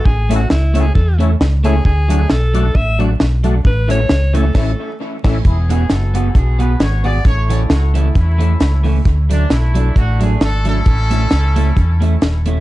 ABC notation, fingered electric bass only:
X:1
M:4/4
L:1/8
Q:"Swing" 1/4=133
K:A
V:1 name="Fingered electric bass" clef=bass
A,,,2 C,,2 E,,2 C,,2 | D,,2 B,,,2 A,,,2 B,,,2 | A,,,2 C,,2 A,,, z2 A,,, | E,,,2 F,,,2 B,,,2 G,,,2 |
A,,,2 C,,2 E,,2 C,,2 | D,,2 B,,,2 A,,,2 G,,,2 | A,,,2 C,,2 E,,2 ^D,,,2 |]